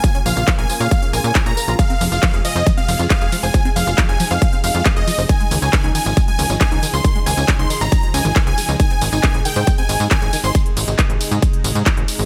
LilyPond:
<<
  \new Staff \with { instrumentName = "Supersaw synth" } { \time 4/4 \key f \minor \tempo 4 = 137 aes''16 r16 f''8 r16 aes''8 f''8 r16 aes''8 r16 bes''8 r16 | f''8 r16 f''8 r16 ees''8 r16 f''8 r16 f''8 r16 aes''16~ | aes''16 r16 f''8 r16 aes''8 f''8 r16 f''8 r16 ees''8 r16 | aes''8 r16 aes''8 r16 aes''8 r16 aes''8 r16 aes''8 r16 c'''16~ |
c'''16 r16 aes''8 r16 c'''8 bes''8 r16 aes''8 r16 aes''8 r16 | aes''8 r16 aes''8 r16 g''8 r16 aes''8 r16 aes''8 r16 c'''16 | r1 | }
  \new Staff \with { instrumentName = "Analog synth pad" } { \time 4/4 \key f \minor <des bes f' aes'>8 <des bes f' aes'>8 <des bes f' aes'>8 <des bes f' aes'>8 <des bes f' aes'>8 <des bes f' aes'>8 r16 <des bes f' aes'>16 <des bes f' aes'>8 | <c aes f' aes'>8 <c aes f' aes'>8 <c aes f' aes'>8 <c aes f' aes'>8 <c aes f' aes'>8 <c aes f' aes'>8 r16 <c aes f' aes'>16 <c aes f' aes'>8 | <c aes ees' aes'>8 <c aes ees' aes'>8 <c aes ees' aes'>8 <c aes ees' aes'>8 <c aes ees' aes'>8 <c aes ees' aes'>8 r16 <c aes ees' aes'>16 <c aes ees' aes'>8 | <des f ees' aes'>8 <des f ees' aes'>8 <des f ees' aes'>8 <des f ees' aes'>8 <des f ees' aes'>8 <des f ees' aes'>8 r16 <des f ees' aes'>16 <des f ees' aes'>8 |
<des f ees' aes'>8 <des f ees' aes'>8 <des f ees' aes'>8 <des f ees' aes'>8 <des f ees' aes'>8 <des f ees' aes'>8 r16 <des f ees' aes'>16 <des f ees' aes'>8 | <c aes ees' aes'>8 <c aes ees' aes'>8 <c aes ees' aes'>8 <c aes ees' aes'>8 <c aes ees' aes'>8 <c aes ees' aes'>8 r16 <c aes ees' aes'>16 <c aes ees' aes'>8 | <c aes ees' aes'>8 <c aes ees' aes'>8 <c aes ees' aes'>8 <c aes ees' aes'>8 <c aes ees' aes'>8 <c aes ees' aes'>8 r16 <c aes ees' aes'>16 <c aes ees' aes'>8 | }
  \new Staff \with { instrumentName = "Synth arpeggio sound" } { \clef bass \time 4/4 \key f \minor f16 des'16 f16 f'16 f16 bes'16 f16 des''16 f16 des'16 bes'16 des''16 f16 des'16 bes'16 f'16 | f16 c'16 f16 f'16 f16 aes'16 f16 c''16 f16 c'16 f16 f'16 f16 aes'16 f16 c''16 | f16 c'16 f16 f'16 f16 aes'16 f16 c''16 f16 c'16 f16 f'16 f16 aes'16 f16 c''16 | ees16 aes16 ees16 des'16 ees16 ees'16 ees16 f'16 ees16 aes16 ees16 des'16 ees16 ees'16 ees16 f'16 |
ees16 aes16 ees16 des'16 ees16 ees'16 ees16 f'16 ees16 aes16 des'16 ees16 aes'16 aes16 aes16 ees'16 | ees16 c'16 ees16 ees'16 ees16 aes'16 ees16 c''16 ees16 c'16 ees16 ees'16 ees16 aes'16 ees16 c''16 | r1 | }
  \new Staff \with { instrumentName = "Analog synth bass" } { \clef bass \time 4/4 \key f \minor r8 bes,,16 bes,,16 r16 bes,,16 r16 bes,16 r8 bes,,16 bes,16 r16 bes,16 r16 bes,,16 | r8 f,,16 f,,16 r16 f,,16 r16 f,16 r8 f,,16 f,16 r16 f,,16 r16 f,,16 | r8 f,,16 f,,16 r16 f,,16 r16 f,16 r8 f,,16 f,16 r16 f,,16 r16 f,,16 | r8 des,16 des,16 r16 des,16 r16 aes,,16 r8 des,16 aes,,16 r16 des,16 r16 des,16 |
r8 des,16 des,16 r16 des,16 r16 aes,,16 r8 des,16 aes,,16 r16 des,16 r16 des,16 | r8 aes,,16 aes,,16 r16 aes,,16 r16 aes,16 r8 aes,,16 aes,16 r16 aes,,16 r16 aes,,16 | r8 aes,,16 aes,,16 r16 aes,,16 r16 aes,16 r8 aes,,16 aes,16 r16 aes,,16 r16 aes,,16 | }
  \new DrumStaff \with { instrumentName = "Drums" } \drummode { \time 4/4 <hh bd tamb>16 hh16 <hho tamb>16 <hh tamb>16 <hc hh bd tamb>16 hh16 <hho tamb>16 <hh tamb>16 <hh bd tamb>16 hh16 <hho tamb>16 <hh tamb>16 <hc hh bd tamb>16 hh16 <hho tamb>16 <hh tamb>16 | <hh bd cymr tamb>16 hh16 <hho cymr tamb>16 <hh tamb>16 <hc hh bd cymr tamb>16 hh16 <hho cymr tamb>16 <hh tamb>16 <hh bd cymr tamb>16 hh16 <hho cymr tamb>16 <hh tamb>16 <hc hh bd cymr tamb>16 hh16 <hho cymr tamb>16 tamb16 | <hh bd cymr tamb>16 hh16 <hho cymr tamb>16 <hh tamb>16 <hc hh bd cymr tamb>16 hh16 <hho cymr tamb>16 <hh tamb>16 <hh bd cymr tamb>16 hh16 <hho cymr tamb>16 <hh tamb>16 <hc hh bd cymr tamb>16 hh16 <hho cymr tamb>16 tamb16 | <hh bd cymr tamb>16 hh16 <hho cymr tamb>16 <hh tamb>16 <hc hh bd cymr tamb>16 hh16 <hho cymr tamb>16 <hh tamb>16 <hh bd cymr tamb>16 hh16 <hho cymr tamb>16 <hh tamb>16 <hc hh bd cymr tamb>16 hh16 <hho cymr tamb>16 tamb16 |
<hh bd cymr tamb>16 hh16 <hho cymr tamb>16 <hh tamb>16 <hc hh bd cymr tamb>16 hh16 <hho cymr tamb>16 <hh tamb>16 <hh bd cymr tamb>16 hh16 <hho cymr tamb>16 <hh tamb>16 <hc hh bd cymr tamb>16 hh16 <hho cymr tamb>16 <hh tamb>16 | <hh bd cymr tamb>16 hh16 <hho cymr tamb>16 <hh tamb>16 <hc hh bd cymr tamb>16 hh16 <hho cymr tamb>16 <hh tamb>16 <hh bd cymr tamb>16 hh16 <hho cymr tamb>16 <hh tamb>16 <hc hh bd cymr tamb>16 hh16 <hho cymr tamb>16 tamb16 | <hh bd cymr tamb>16 hh16 <hho cymr tamb>16 <hh tamb>16 <hc hh bd cymr tamb>16 hh16 <hho cymr tamb>16 <hh tamb>16 <hh bd cymr tamb>16 hh16 <hho cymr tamb>16 <hh tamb>16 <hc hh bd cymr tamb>16 hh16 <hho cymr tamb>16 tamb16 | }
>>